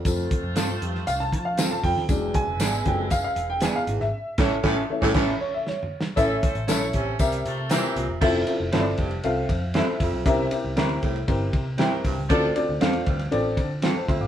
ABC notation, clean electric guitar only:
X:1
M:4/4
L:1/16
Q:1/4=118
K:Aphr
V:1 name="Clean electric guitar"
z4 [CFA]2 z6 [CFA]2 z2 | z4 [=B,D^G]2 z6 [B,DG]2 z2 | z2 [^CEA]2 [CEA]2 z [CEA] [CEA]2 z6 | z4 [^CEA]2 z6 [=CEB]2 z2 |
[K:F] z4 [CEA]2 z6 [CEA]2 z2 | z4 [CEB]2 z6 [CEB]2 z2 | z4 [CFA]2 z6 [CFA]2 z2 |]